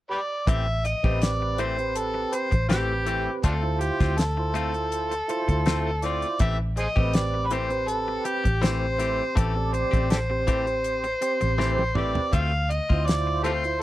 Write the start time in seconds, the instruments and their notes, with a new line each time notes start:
0.11 harmonica G4 B4 D5
0.47 fingered electric bass A1, clean electric guitar E3 A3 C4 G4, harmonica E5, kick, closed hi-hat
0.68 muted clean electric guitar stroke
0.85 harmonica D#5, muted clean electric guitar stroke, closed hi-hat
1.03 fingered electric bass A1, clean electric guitar A3 C4 G4, tonewheel organ C4 G4 B4, kick
1.22 harmonica D5, muted clean electric guitar stroke, snare, closed hi-hat
1.42 muted clean electric guitar stroke
1.58 clean electric guitar E3 A3 C4 G4, harmonica C5, closed hi-hat
1.78 tonewheel organ C4 G4 B4, muted clean electric guitar stroke, closed hi-hat
1.96 harmonica A4, closed hi-hat
2.14 muted clean electric guitar stroke
2.32 harmonica C5, muted clean electric guitar stroke, closed hi-hat
2.51 fingered electric bass A1, muted clean electric guitar stroke, kick, closed hi-hat
2.69 clean electric guitar E3 A3 C4 G4, tonewheel organ C4 G4 B4, harmonica G4, snare, closed hi-hat
3.06 clean electric guitar E3 A3 C4 G4, closed hi-hat
3.43 fingered electric bass D2, clean electric guitar A3 C4 F4, harmonica D4 F4 A4, kick, closed hi-hat
3.62 tonewheel organ E4 F4 C5, muted clean electric guitar stroke
3.81 harmonica G4, muted clean electric guitar stroke, closed hi-hat
4.00 fingered electric bass D2, clean electric guitar C4 F4, kick, snare, closed hi-hat
4.18 harmonica A4, muted clean electric guitar stroke, snare, closed hi-hat
4.37 tonewheel organ E4 F4 C5, muted clean electric guitar stroke
4.54 clean electric guitar A3 C4 F4, closed hi-hat
4.74 muted clean electric guitar stroke, closed hi-hat
4.92 closed hi-hat
5.11 muted clean electric guitar stroke, closed hi-hat
5.28 tonewheel organ E4 F4 C5, muted clean electric guitar stroke, closed hi-hat
5.48 fingered electric bass D2, muted clean electric guitar stroke, kick, closed hi-hat
5.66 clean electric guitar A3 C4 F4, snare, closed hi-hat
6.02 clean electric guitar A3 C4 F4, tonewheel organ E4 F4 C5, harmonica D5, closed hi-hat
6.22 closed hi-hat
6.39 fingered electric bass A1, clean electric guitar E3 A3 C4 G4, harmonica E5, kick, closed hi-hat
6.60 muted clean electric guitar stroke
6.76 harmonica G#4 C5 D#5, muted clean electric guitar stroke, closed hi-hat
6.96 fingered electric bass A1, clean electric guitar A3 C4 G4, tonewheel organ C4 G4 B4, kick
7.13 harmonica D5, muted clean electric guitar stroke, snare, closed hi-hat
7.34 muted clean electric guitar stroke
7.46 harmonica B4
7.51 clean electric guitar E3 A3 C4 G4, harmonica C5, closed hi-hat
7.69 tonewheel organ C4 G4 B4, muted clean electric guitar stroke, closed hi-hat
7.88 harmonica A4, closed hi-hat
8.08 muted clean electric guitar stroke
8.25 harmonica G4, muted clean electric guitar stroke, closed hi-hat
8.44 fingered electric bass A1, muted clean electric guitar stroke, kick, closed hi-hat
8.62 clean electric guitar E3 A3 C4 G4, tonewheel organ C4 G4 C5, harmonica C5, snare, closed hi-hat
8.98 clean electric guitar E3 A3 C4 G4, closed hi-hat
9.36 fingered electric bass A1, clean electric guitar E3 A3 C4 G4, harmonica A4, kick, closed hi-hat
9.55 tonewheel organ C4 G4 D5, muted clean electric guitar stroke
9.73 harmonica C5, muted clean electric guitar stroke, closed hi-hat
9.91 fingered electric bass A1, clean electric guitar A3 C4 G4, kick, closed hi-hat
10.10 harmonica G4 A4 C5, muted clean electric guitar stroke, snare, closed hi-hat
10.30 tonewheel organ C4 G4 C5, muted clean electric guitar stroke
10.47 clean electric guitar E3 A3 C4 G4, kick, closed hi-hat
10.67 muted clean electric guitar stroke, closed hi-hat
10.84 closed hi-hat
11.04 muted clean electric guitar stroke, closed hi-hat
11.21 tonewheel organ C4 G4 C5, muted clean electric guitar stroke, closed hi-hat
11.41 fingered electric bass A1, muted clean electric guitar stroke, closed hi-hat
11.58 clean electric guitar E3 A3 C4 G4, snare
11.78 high tom
11.95 clean electric guitar E3 A3 C4 G4, tonewheel organ C4 G4 B4, harmonica D5, mid tom
12.15 floor tom
12.33 fingered electric bass D2, clean electric guitar A3 C4 F4, harmonica F5, kick, closed hi-hat
12.53 muted clean electric guitar stroke
12.70 harmonica D#5, muted clean electric guitar stroke, closed hi-hat
12.89 fingered electric bass D2, clean electric guitar C4 F4, tonewheel organ E4 F4 C5, kick
13.06 harmonica D5, muted clean electric guitar stroke, snare, closed hi-hat
13.27 muted clean electric guitar stroke
13.43 clean electric guitar A3 C4 F4, harmonica G4 A4 C5, closed hi-hat
13.64 tonewheel organ E4 F4 C5, closed hi-hat